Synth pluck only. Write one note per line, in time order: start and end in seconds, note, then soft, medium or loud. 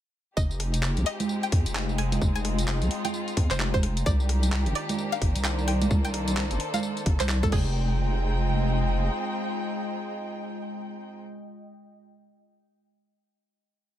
0.37 0.57 D#5 loud
1.06 1.26 D#5 loud
1.43 1.61 G5 loud
1.75 1.90 G#5 medium
1.98 2.18 G#5 medium
2.35 2.54 G#5 loud
3.05 3.15 G5 medium
3.51 3.61 C5 medium
3.74 3.92 C5 medium
4.06 4.26 D5 loud
4.75 4.95 D5 loud
5.12 5.30 F5 loud
5.44 5.59 G5 medium
5.68 5.87 G5 loud
6.05 6.23 G5 loud
6.74 6.84 F5 medium
7.20 7.31 C5 medium
7.43 7.52 A4 loud
7.52 11.19 G#4 medium